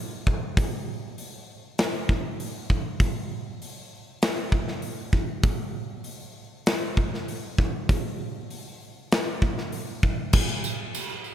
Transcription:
0.27 kick medium
0.57 kick loud
0.57 open hi-hat medium
1.18 open hi-hat medium
1.78 snare loud
1.78 open hi-hat medium
2.09 kick medium
2.40 open hi-hat medium
2.70 kick medium
3.00 kick loud
3.00 open hi-hat medium
3.62 open hi-hat medium
4.22 snare loud
4.22 open hi-hat medium
4.52 kick medium
4.68 snare soft
4.82 open hi-hat medium
5.13 kick medium
5.43 kick loud
5.43 open hi-hat medium
6.04 open hi-hat medium
6.66 snare loud
6.66 open hi-hat medium
6.97 kick medium
7.14 snare soft
7.28 open hi-hat medium
7.58 kick medium
7.89 kick loud
7.89 open hi-hat medium
8.50 open hi-hat medium
9.12 snare loud
9.12 open hi-hat medium
9.42 kick medium
9.58 snare soft
9.72 open hi-hat medium
10.03 kick medium
10.33 kick loud
10.33 crash loud
10.33 tambourine soft
10.33 crash medium
10.49 tambourine soft
10.64 tambourine medium
10.95 tambourine loud
10.95 crash medium
11.09 tambourine soft
11.24 tambourine soft

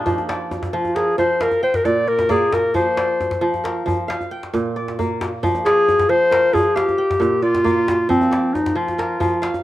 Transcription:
0.00 0.11 A#2 medium
0.00 1.54 A#3 medium
0.00 1.63 D4 medium
0.00 0.35 D#4 medium
0.00 1.23 F4 medium
0.00 1.02 G4 medium
0.00 0.86 G#4 medium
0.00 0.66 A#4 medium
0.06 0.72 F3 medium
0.06 djembe slap soft
0.06 djembe bass medium
0.18 djembe slap soft
0.18 djembe tone medium
0.29 1.40 D5 medium
0.29 djembe slap medium
0.51 djembe slap soft
0.51 djembe tone medium
0.63 djembe slap medium
0.63 djembe bass medium
0.73 1.17 F3 medium
0.73 0.97 F4 medium
0.85 djembe tone medium
0.95 1.18 G#4 medium
0.95 2.23 A#4 medium
0.95 djembe slap medium
1.18 1.45 F3 medium
1.18 1.43 C5 medium
1.18 djembe tone medium
1.30 djembe slap soft
1.41 1.63 A#4 medium
1.41 2.41 F5 medium
1.41 djembe slap medium
1.52 djembe tone soft
1.63 1.77 C5 medium
1.63 2.56 G5 medium
1.74 1.87 A#4 medium
1.74 djembe slap medium
1.74 djembe bass medium
1.85 2.79 A#2 medium
1.85 2.10 D5 medium
1.85 djembe slap soft
1.85 djembe tone medium
1.96 djembe slap soft
2.07 2.32 A#4 medium
2.07 2.29 D5 medium
2.19 djembe slap medium
2.19 djembe tone medium
2.29 4.22 A#3 medium
2.29 2.55 G#4 medium
2.29 2.97 D5 medium
2.29 djembe bass medium
2.42 djembe slap soft
2.52 2.75 A#4 medium
2.52 djembe slap medium
2.52 djembe tone medium
2.74 3.40 F3 medium
2.74 3.60 C5 medium
2.74 djembe bass medium
2.97 4.08 D5 medium
2.97 djembe slap medium
3.21 djembe slap soft
3.21 djembe tone medium
3.31 djembe slap medium
3.31 djembe bass soft
3.41 3.85 F3 medium
3.54 djembe tone medium
3.64 4.91 A#4 medium
3.64 djembe slap medium
3.86 4.13 F3 medium
3.86 djembe slap soft
3.86 djembe tone medium
3.86 djembe bass medium
4.08 5.08 F5 medium
4.08 djembe slap medium
4.21 djembe slap soft
4.21 djembe tone soft
4.31 5.24 G5 medium
4.31 djembe slap soft
4.43 djembe slap soft
4.53 5.47 A#2 medium
4.53 djembe tone medium
4.66 djembe slap soft
4.76 5.65 D5 medium
4.76 djembe slap soft
4.88 djembe slap medium
4.99 6.92 A#3 medium
4.99 djembe bass medium
5.21 djembe slap medium
5.21 djembe tone medium
5.43 6.08 F3 medium
5.43 djembe slap soft
5.43 djembe bass medium
5.55 djembe slap soft
5.55 djembe tone medium
5.65 6.11 G#4 loud
5.65 6.76 D5 medium
5.65 djembe slap medium
5.89 djembe slap soft
5.89 djembe tone medium
5.99 djembe slap medium
5.99 djembe bass medium
6.09 6.52 F3 medium
6.09 6.55 C5 loud
6.31 7.59 A#4 medium
6.31 djembe slap medium
6.53 6.81 F3 medium
6.53 6.77 G#4 loud
6.53 djembe tone medium
6.53 djembe bass medium
6.67 djembe slap soft
6.75 7.44 G4 medium
6.75 7.76 F5 medium
6.75 djembe slap medium
6.89 djembe slap soft
6.89 djembe tone medium
6.98 7.91 G5 medium
7.11 djembe slap medium
7.11 djembe bass medium
7.20 8.14 A#2 medium
7.20 djembe slap soft
7.20 djembe tone medium
7.33 djembe slap soft
7.42 8.09 F4 loud
7.42 7.64 D5 medium
7.55 djembe slap medium
7.55 djembe tone medium
7.64 9.57 A#3 medium
7.64 8.31 D5 medium
7.64 djembe bass medium
7.77 djembe slap soft
7.88 djembe slap medium
7.88 djembe tone medium
8.09 8.74 F3 medium
8.09 8.56 C4 medium
8.09 djembe slap soft
8.09 djembe bass medium
8.21 djembe slap soft
8.21 djembe tone medium
8.31 9.42 D5 medium
8.31 djembe slap medium
8.54 8.78 D#4 medium
8.54 djembe slap soft
8.54 djembe tone medium
8.66 djembe slap medium
8.66 djembe bass medium
8.75 9.19 F3 medium
8.75 9.63 F4 medium
8.88 djembe tone medium
8.98 9.63 A#4 medium
8.98 djembe slap medium
9.20 9.48 F3 medium
9.20 djembe tone medium
9.20 djembe bass medium
9.32 djembe slap soft
9.42 9.63 F5 medium
9.42 djembe slap medium
9.54 djembe slap soft
9.54 djembe tone medium

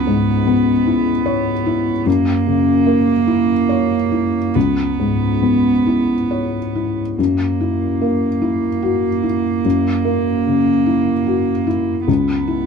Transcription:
0.00 2.03 C#2 soft
0.00 2.08 B3 soft
0.00 0.86 E4 soft
0.07 0.70 G#2 soft
0.47 1.10 B3 soft
0.86 1.50 E4 soft
1.26 1.90 C#5 soft
1.66 2.06 E4 soft
2.06 4.51 F#2 soft
2.06 4.57 A#3 medium
2.46 3.11 C#3 soft
2.87 3.52 A#3 soft
3.27 3.94 E4 soft
3.69 4.38 C#5 soft
4.12 4.55 E4 soft
4.55 7.14 C#2 soft
4.55 6.97 B3 soft
5.00 5.70 G#2 soft
5.42 6.13 B3 soft
5.86 6.57 E4 soft
6.31 7.01 C#5 soft
6.75 7.18 E4 soft
7.18 9.61 F#2 soft
7.18 12.04 A#3 soft
7.61 8.26 E4 soft
8.01 8.66 A#3 soft
8.42 9.07 E4 soft
8.82 9.23 F#4 soft
9.23 9.89 E4 soft
9.64 12.04 F#2 soft
10.05 10.70 A#3 soft
10.46 11.11 C#3 soft
10.86 11.51 E4 soft
11.27 11.67 F#4 soft
11.67 12.08 E4 soft
12.08 12.66 C#2 soft
12.08 12.66 B3 soft
12.48 12.66 E4 soft

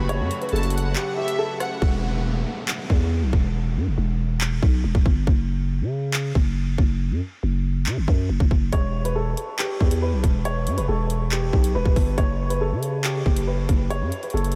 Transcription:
0.00 0.21 F#1 loud
0.00 1.78 C#3 medium
0.00 1.78 F#3 medium
0.00 1.78 A3 medium
0.00 1.78 F#4 medium
0.09 0.40 C#5 loud
0.09 closed hi-hat medium
0.20 0.30 F#2 loud
0.31 closed hi-hat medium
0.42 0.51 B4 medium
0.42 closed hi-hat soft
0.49 0.96 F#1 loud
0.49 0.93 A4 medium
0.49 0.73 A5 medium
0.49 closed hi-hat medium
0.56 closed hi-hat medium
0.63 closed hi-hat medium
0.70 1.15 F#5 medium
0.70 closed hi-hat medium
0.78 closed hi-hat medium
0.95 1.14 G4 medium
0.95 clap loud
1.17 1.36 G4 medium
1.17 1.58 E5 medium
1.28 closed hi-hat medium
1.39 1.79 A4 medium
1.60 1.81 F#5 medium
1.60 cross-stick medium
1.60 closed hi-hat medium
1.82 2.44 E1 loud
1.82 kick loud
1.82 downlifter medium
2.68 clap loud
2.90 3.24 E2 loud
2.90 kick loud
3.22 3.32 B1 loud
3.33 3.78 E1 loud
3.33 kick medium
3.76 3.88 G2 loud
3.87 3.97 E1 loud
3.98 4.60 E1 loud
4.41 clap loud
4.63 4.83 B1 loud
4.63 kick loud
4.84 4.94 E1 loud
4.95 5.05 E1 loud
4.95 kick medium
5.06 5.26 G1 loud
5.06 kick medium
5.27 5.83 F#1 loud
5.27 kick loud
5.81 6.32 C#3 loud
6.14 clap loud
6.35 6.77 F#1 loud
6.35 kick loud
6.78 7.12 F#1 loud
6.78 kick medium
7.11 7.21 F#2 loud
7.43 7.88 F#1 loud
7.86 7.98 C#3 loud
7.86 clap loud
7.97 8.07 F#1 loud
8.08 8.29 F#2 loud
8.08 kick loud
8.29 8.40 F#1 loud
8.40 8.51 F#1 loud
8.40 kick loud
8.51 8.72 F#1 loud
8.51 kick medium
8.73 9.35 E1 loud
8.73 9.03 C#5 loud
8.73 kick loud
8.73 closed hi-hat medium
9.05 9.14 B4 medium
9.05 closed hi-hat medium
9.15 9.56 A4 medium
9.37 closed hi-hat medium
9.58 9.77 G4 medium
9.58 clap loud
9.58 closed hi-hat medium
9.80 10.14 E2 loud
9.80 9.99 G4 medium
9.80 kick loud
9.91 closed hi-hat medium
10.02 10.21 B4 medium
10.13 10.23 B1 loud
10.24 10.68 E1 loud
10.24 kick medium
10.24 closed hi-hat medium
10.45 10.76 C#5 loud
10.45 closed hi-hat medium
10.67 10.79 G2 loud
10.67 closed hi-hat medium
10.77 10.88 E1 loud
10.77 10.87 B4 medium
10.77 closed hi-hat medium
10.88 11.51 E1 loud
10.88 11.29 A4 medium
11.10 closed hi-hat medium
11.31 11.50 G4 medium
11.31 clap loud
11.53 11.74 B1 loud
11.53 11.72 G4 medium
11.53 kick loud
11.64 closed hi-hat medium
11.75 11.85 E1 loud
11.75 12.15 B4 loud
11.85 11.96 E1 loud
11.85 kick loud
11.96 12.17 G1 loud
11.96 kick medium
11.96 open hi-hat soft
12.18 12.73 F#1 loud
12.18 12.48 C#5 loud
12.18 kick loud
12.18 closed hi-hat medium
12.50 12.59 B4 medium
12.50 closed hi-hat medium
12.61 13.02 A4 medium
12.72 13.23 C#3 loud
12.83 closed hi-hat medium
13.04 13.23 G4 medium
13.04 clap loud
13.04 closed hi-hat medium
13.26 13.67 F#1 loud
13.26 13.44 G4 medium
13.26 kick loud
13.36 closed hi-hat medium
13.47 13.66 B4 medium
13.69 14.03 F#1 loud
13.69 kick medium
13.69 closed hi-hat medium
13.90 14.21 C#5 loud
13.90 closed hi-hat medium
14.01 14.12 F#2 loud
14.12 closed hi-hat medium
14.23 14.32 B4 medium
14.23 closed hi-hat soft
14.30 14.55 F#1 loud
14.30 14.55 A4 medium
14.30 closed hi-hat medium
14.37 closed hi-hat medium
14.44 closed hi-hat medium
14.52 closed hi-hat medium

